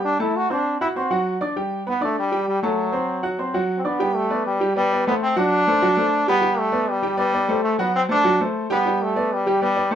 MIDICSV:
0, 0, Header, 1, 3, 480
1, 0, Start_track
1, 0, Key_signature, 1, "major"
1, 0, Tempo, 303644
1, 556, Time_signature, 4, 2, 24, 8
1, 15731, End_track
2, 0, Start_track
2, 0, Title_t, "Upright piano"
2, 0, Program_c, 0, 0
2, 0, Note_on_c, 0, 55, 75
2, 0, Note_on_c, 0, 67, 76
2, 0, Note_on_c, 0, 79, 80
2, 231, Note_off_c, 0, 55, 0
2, 235, Note_off_c, 0, 67, 0
2, 237, Note_off_c, 0, 79, 0
2, 307, Note_on_c, 0, 57, 77
2, 315, Note_on_c, 0, 81, 83
2, 316, Note_on_c, 0, 69, 77
2, 704, Note_off_c, 0, 57, 0
2, 709, Note_off_c, 0, 81, 0
2, 710, Note_off_c, 0, 69, 0
2, 792, Note_on_c, 0, 60, 77
2, 796, Note_on_c, 0, 72, 77
2, 804, Note_on_c, 0, 84, 75
2, 1187, Note_off_c, 0, 60, 0
2, 1190, Note_off_c, 0, 72, 0
2, 1194, Note_off_c, 0, 84, 0
2, 1281, Note_on_c, 0, 66, 70
2, 1282, Note_on_c, 0, 78, 72
2, 1284, Note_on_c, 0, 90, 76
2, 1476, Note_off_c, 0, 66, 0
2, 1476, Note_off_c, 0, 78, 0
2, 1478, Note_off_c, 0, 90, 0
2, 1515, Note_on_c, 0, 60, 71
2, 1521, Note_on_c, 0, 72, 73
2, 1527, Note_on_c, 0, 84, 74
2, 1712, Note_off_c, 0, 60, 0
2, 1716, Note_off_c, 0, 72, 0
2, 1719, Note_off_c, 0, 84, 0
2, 1747, Note_on_c, 0, 54, 80
2, 1748, Note_on_c, 0, 66, 85
2, 1753, Note_on_c, 0, 78, 78
2, 2145, Note_off_c, 0, 54, 0
2, 2145, Note_off_c, 0, 66, 0
2, 2148, Note_off_c, 0, 78, 0
2, 2227, Note_on_c, 0, 74, 81
2, 2228, Note_on_c, 0, 62, 75
2, 2237, Note_on_c, 0, 86, 79
2, 2428, Note_off_c, 0, 62, 0
2, 2428, Note_off_c, 0, 74, 0
2, 2433, Note_off_c, 0, 86, 0
2, 2470, Note_on_c, 0, 55, 78
2, 2471, Note_on_c, 0, 67, 78
2, 2478, Note_on_c, 0, 79, 77
2, 2867, Note_off_c, 0, 55, 0
2, 2867, Note_off_c, 0, 67, 0
2, 2871, Note_off_c, 0, 79, 0
2, 2949, Note_on_c, 0, 59, 80
2, 2953, Note_on_c, 0, 71, 66
2, 2955, Note_on_c, 0, 83, 66
2, 3149, Note_off_c, 0, 59, 0
2, 3151, Note_off_c, 0, 71, 0
2, 3152, Note_off_c, 0, 83, 0
2, 3175, Note_on_c, 0, 62, 78
2, 3185, Note_on_c, 0, 86, 76
2, 3188, Note_on_c, 0, 74, 80
2, 3578, Note_off_c, 0, 62, 0
2, 3584, Note_off_c, 0, 86, 0
2, 3586, Note_off_c, 0, 74, 0
2, 3662, Note_on_c, 0, 55, 78
2, 3669, Note_on_c, 0, 67, 75
2, 3676, Note_on_c, 0, 79, 85
2, 4062, Note_off_c, 0, 55, 0
2, 4066, Note_off_c, 0, 67, 0
2, 4071, Note_off_c, 0, 79, 0
2, 4154, Note_on_c, 0, 57, 79
2, 4157, Note_on_c, 0, 69, 75
2, 4167, Note_on_c, 0, 81, 75
2, 4549, Note_off_c, 0, 57, 0
2, 4551, Note_off_c, 0, 69, 0
2, 4557, Note_off_c, 0, 81, 0
2, 4621, Note_on_c, 0, 72, 78
2, 4622, Note_on_c, 0, 60, 79
2, 4633, Note_on_c, 0, 84, 68
2, 5022, Note_off_c, 0, 72, 0
2, 5023, Note_off_c, 0, 60, 0
2, 5029, Note_off_c, 0, 84, 0
2, 5105, Note_on_c, 0, 66, 75
2, 5107, Note_on_c, 0, 78, 77
2, 5116, Note_on_c, 0, 90, 78
2, 5307, Note_off_c, 0, 66, 0
2, 5309, Note_off_c, 0, 78, 0
2, 5314, Note_off_c, 0, 90, 0
2, 5351, Note_on_c, 0, 60, 70
2, 5358, Note_on_c, 0, 72, 73
2, 5364, Note_on_c, 0, 84, 68
2, 5551, Note_off_c, 0, 60, 0
2, 5555, Note_off_c, 0, 72, 0
2, 5559, Note_off_c, 0, 84, 0
2, 5597, Note_on_c, 0, 54, 84
2, 5600, Note_on_c, 0, 66, 76
2, 5601, Note_on_c, 0, 78, 76
2, 5991, Note_off_c, 0, 54, 0
2, 5993, Note_off_c, 0, 66, 0
2, 5994, Note_off_c, 0, 78, 0
2, 6076, Note_on_c, 0, 62, 73
2, 6085, Note_on_c, 0, 86, 72
2, 6087, Note_on_c, 0, 74, 73
2, 6274, Note_off_c, 0, 62, 0
2, 6279, Note_off_c, 0, 86, 0
2, 6280, Note_off_c, 0, 74, 0
2, 6315, Note_on_c, 0, 55, 86
2, 6322, Note_on_c, 0, 67, 77
2, 6327, Note_on_c, 0, 79, 93
2, 6710, Note_off_c, 0, 55, 0
2, 6714, Note_off_c, 0, 67, 0
2, 6717, Note_off_c, 0, 79, 0
2, 6790, Note_on_c, 0, 59, 73
2, 6797, Note_on_c, 0, 71, 73
2, 6807, Note_on_c, 0, 74, 78
2, 7187, Note_off_c, 0, 59, 0
2, 7191, Note_off_c, 0, 71, 0
2, 7197, Note_off_c, 0, 74, 0
2, 7278, Note_on_c, 0, 55, 80
2, 7285, Note_on_c, 0, 67, 90
2, 7291, Note_on_c, 0, 79, 82
2, 7475, Note_off_c, 0, 55, 0
2, 7479, Note_off_c, 0, 67, 0
2, 7483, Note_off_c, 0, 79, 0
2, 7519, Note_on_c, 0, 59, 77
2, 7531, Note_on_c, 0, 71, 80
2, 7533, Note_on_c, 0, 74, 79
2, 7716, Note_off_c, 0, 59, 0
2, 7723, Note_off_c, 0, 71, 0
2, 7724, Note_off_c, 0, 74, 0
2, 7782, Note_on_c, 0, 59, 75
2, 7785, Note_on_c, 0, 71, 80
2, 7787, Note_on_c, 0, 74, 83
2, 7969, Note_off_c, 0, 59, 0
2, 7971, Note_off_c, 0, 71, 0
2, 7972, Note_off_c, 0, 74, 0
2, 8017, Note_on_c, 0, 57, 88
2, 8019, Note_on_c, 0, 69, 80
2, 8020, Note_on_c, 0, 72, 79
2, 8403, Note_off_c, 0, 57, 0
2, 8404, Note_off_c, 0, 69, 0
2, 8404, Note_off_c, 0, 72, 0
2, 8477, Note_on_c, 0, 54, 92
2, 8480, Note_on_c, 0, 66, 94
2, 8485, Note_on_c, 0, 78, 93
2, 8871, Note_off_c, 0, 54, 0
2, 8873, Note_off_c, 0, 66, 0
2, 8876, Note_off_c, 0, 78, 0
2, 8965, Note_on_c, 0, 57, 75
2, 8977, Note_on_c, 0, 72, 84
2, 8978, Note_on_c, 0, 69, 86
2, 9159, Note_off_c, 0, 57, 0
2, 9166, Note_off_c, 0, 69, 0
2, 9166, Note_off_c, 0, 72, 0
2, 9203, Note_on_c, 0, 66, 91
2, 9204, Note_on_c, 0, 54, 93
2, 9211, Note_on_c, 0, 78, 86
2, 9397, Note_off_c, 0, 66, 0
2, 9398, Note_off_c, 0, 54, 0
2, 9402, Note_off_c, 0, 78, 0
2, 9434, Note_on_c, 0, 69, 78
2, 9436, Note_on_c, 0, 57, 73
2, 9447, Note_on_c, 0, 72, 69
2, 9829, Note_off_c, 0, 69, 0
2, 9830, Note_off_c, 0, 57, 0
2, 9837, Note_off_c, 0, 72, 0
2, 9921, Note_on_c, 0, 55, 94
2, 9928, Note_on_c, 0, 67, 96
2, 9930, Note_on_c, 0, 79, 93
2, 10116, Note_off_c, 0, 55, 0
2, 10119, Note_off_c, 0, 67, 0
2, 10122, Note_off_c, 0, 79, 0
2, 10141, Note_on_c, 0, 55, 80
2, 10143, Note_on_c, 0, 67, 91
2, 10155, Note_on_c, 0, 79, 82
2, 10541, Note_off_c, 0, 55, 0
2, 10542, Note_off_c, 0, 67, 0
2, 10549, Note_off_c, 0, 79, 0
2, 10620, Note_on_c, 0, 59, 77
2, 10622, Note_on_c, 0, 71, 75
2, 10625, Note_on_c, 0, 74, 76
2, 11021, Note_off_c, 0, 59, 0
2, 11021, Note_off_c, 0, 71, 0
2, 11023, Note_off_c, 0, 74, 0
2, 11105, Note_on_c, 0, 55, 87
2, 11106, Note_on_c, 0, 67, 87
2, 11116, Note_on_c, 0, 79, 83
2, 11307, Note_off_c, 0, 55, 0
2, 11307, Note_off_c, 0, 67, 0
2, 11313, Note_off_c, 0, 79, 0
2, 11337, Note_on_c, 0, 71, 86
2, 11341, Note_on_c, 0, 59, 74
2, 11344, Note_on_c, 0, 74, 82
2, 11542, Note_off_c, 0, 71, 0
2, 11544, Note_off_c, 0, 59, 0
2, 11546, Note_off_c, 0, 74, 0
2, 11587, Note_on_c, 0, 59, 79
2, 11591, Note_on_c, 0, 71, 78
2, 11602, Note_on_c, 0, 74, 76
2, 11788, Note_off_c, 0, 59, 0
2, 11790, Note_off_c, 0, 71, 0
2, 11796, Note_off_c, 0, 74, 0
2, 11832, Note_on_c, 0, 57, 79
2, 11834, Note_on_c, 0, 69, 89
2, 11837, Note_on_c, 0, 72, 78
2, 12227, Note_off_c, 0, 57, 0
2, 12228, Note_off_c, 0, 69, 0
2, 12230, Note_off_c, 0, 72, 0
2, 12305, Note_on_c, 0, 54, 89
2, 12315, Note_on_c, 0, 66, 95
2, 12322, Note_on_c, 0, 78, 95
2, 12703, Note_off_c, 0, 54, 0
2, 12709, Note_off_c, 0, 66, 0
2, 12713, Note_off_c, 0, 78, 0
2, 12783, Note_on_c, 0, 57, 82
2, 12791, Note_on_c, 0, 69, 87
2, 12796, Note_on_c, 0, 72, 79
2, 12985, Note_off_c, 0, 57, 0
2, 12989, Note_off_c, 0, 69, 0
2, 12992, Note_off_c, 0, 72, 0
2, 13033, Note_on_c, 0, 54, 94
2, 13036, Note_on_c, 0, 66, 92
2, 13037, Note_on_c, 0, 78, 89
2, 13231, Note_off_c, 0, 54, 0
2, 13232, Note_off_c, 0, 66, 0
2, 13233, Note_off_c, 0, 78, 0
2, 13286, Note_on_c, 0, 57, 75
2, 13287, Note_on_c, 0, 69, 78
2, 13295, Note_on_c, 0, 72, 80
2, 13675, Note_off_c, 0, 57, 0
2, 13675, Note_off_c, 0, 69, 0
2, 13680, Note_off_c, 0, 72, 0
2, 13754, Note_on_c, 0, 55, 87
2, 13754, Note_on_c, 0, 67, 101
2, 13761, Note_on_c, 0, 79, 93
2, 13951, Note_off_c, 0, 55, 0
2, 13951, Note_off_c, 0, 67, 0
2, 13954, Note_off_c, 0, 79, 0
2, 14004, Note_on_c, 0, 55, 89
2, 14007, Note_on_c, 0, 67, 86
2, 14014, Note_on_c, 0, 79, 88
2, 14393, Note_off_c, 0, 55, 0
2, 14395, Note_off_c, 0, 67, 0
2, 14399, Note_off_c, 0, 79, 0
2, 14474, Note_on_c, 0, 59, 68
2, 14482, Note_on_c, 0, 71, 75
2, 14486, Note_on_c, 0, 74, 83
2, 14866, Note_off_c, 0, 59, 0
2, 14871, Note_off_c, 0, 71, 0
2, 14874, Note_off_c, 0, 74, 0
2, 14960, Note_on_c, 0, 55, 89
2, 14970, Note_on_c, 0, 67, 90
2, 14973, Note_on_c, 0, 79, 82
2, 15154, Note_off_c, 0, 55, 0
2, 15159, Note_off_c, 0, 67, 0
2, 15161, Note_off_c, 0, 79, 0
2, 15195, Note_on_c, 0, 59, 70
2, 15196, Note_on_c, 0, 71, 78
2, 15203, Note_on_c, 0, 74, 78
2, 15390, Note_off_c, 0, 59, 0
2, 15391, Note_off_c, 0, 71, 0
2, 15395, Note_off_c, 0, 74, 0
2, 15429, Note_on_c, 0, 59, 72
2, 15435, Note_on_c, 0, 74, 84
2, 15436, Note_on_c, 0, 71, 80
2, 15627, Note_off_c, 0, 59, 0
2, 15630, Note_off_c, 0, 74, 0
2, 15631, Note_off_c, 0, 71, 0
2, 15662, Note_on_c, 0, 57, 85
2, 15666, Note_on_c, 0, 69, 91
2, 15670, Note_on_c, 0, 72, 83
2, 15731, Note_off_c, 0, 57, 0
2, 15731, Note_off_c, 0, 69, 0
2, 15731, Note_off_c, 0, 72, 0
2, 15731, End_track
3, 0, Start_track
3, 0, Title_t, "Trombone"
3, 0, Program_c, 1, 57
3, 75, Note_on_c, 1, 62, 100
3, 299, Note_off_c, 1, 62, 0
3, 318, Note_on_c, 1, 64, 92
3, 574, Note_on_c, 1, 66, 103
3, 597, Note_off_c, 1, 64, 0
3, 810, Note_on_c, 1, 62, 89
3, 834, Note_off_c, 1, 66, 0
3, 1275, Note_off_c, 1, 62, 0
3, 1285, Note_on_c, 1, 64, 94
3, 1391, Note_off_c, 1, 64, 0
3, 1534, Note_on_c, 1, 66, 89
3, 2195, Note_off_c, 1, 66, 0
3, 2989, Note_on_c, 1, 59, 101
3, 3197, Note_off_c, 1, 59, 0
3, 3232, Note_on_c, 1, 57, 92
3, 3439, Note_off_c, 1, 57, 0
3, 3467, Note_on_c, 1, 55, 99
3, 3900, Note_off_c, 1, 55, 0
3, 3926, Note_on_c, 1, 55, 99
3, 4145, Note_off_c, 1, 55, 0
3, 4159, Note_on_c, 1, 54, 89
3, 5776, Note_off_c, 1, 54, 0
3, 5973, Note_on_c, 1, 60, 69
3, 6098, Note_on_c, 1, 59, 98
3, 6122, Note_off_c, 1, 60, 0
3, 6564, Note_on_c, 1, 57, 100
3, 6588, Note_off_c, 1, 59, 0
3, 7041, Note_off_c, 1, 57, 0
3, 7054, Note_on_c, 1, 55, 93
3, 7493, Note_off_c, 1, 55, 0
3, 7543, Note_on_c, 1, 55, 112
3, 7978, Note_off_c, 1, 55, 0
3, 8030, Note_on_c, 1, 59, 100
3, 8131, Note_off_c, 1, 59, 0
3, 8263, Note_on_c, 1, 60, 107
3, 8475, Note_off_c, 1, 60, 0
3, 8510, Note_on_c, 1, 62, 113
3, 9870, Note_off_c, 1, 62, 0
3, 9944, Note_on_c, 1, 59, 110
3, 10413, Note_on_c, 1, 57, 99
3, 10437, Note_off_c, 1, 59, 0
3, 10904, Note_on_c, 1, 55, 105
3, 10928, Note_off_c, 1, 57, 0
3, 11357, Note_off_c, 1, 55, 0
3, 11367, Note_on_c, 1, 55, 105
3, 12031, Note_off_c, 1, 55, 0
3, 12082, Note_on_c, 1, 57, 99
3, 12302, Note_off_c, 1, 57, 0
3, 12329, Note_on_c, 1, 59, 89
3, 12546, Note_off_c, 1, 59, 0
3, 12576, Note_on_c, 1, 60, 104
3, 12680, Note_off_c, 1, 60, 0
3, 12825, Note_on_c, 1, 62, 114
3, 13306, Note_off_c, 1, 62, 0
3, 13784, Note_on_c, 1, 59, 97
3, 14265, Note_on_c, 1, 57, 91
3, 14288, Note_off_c, 1, 59, 0
3, 14747, Note_on_c, 1, 55, 94
3, 14771, Note_off_c, 1, 57, 0
3, 15209, Note_off_c, 1, 55, 0
3, 15218, Note_on_c, 1, 55, 103
3, 15721, Note_off_c, 1, 55, 0
3, 15731, End_track
0, 0, End_of_file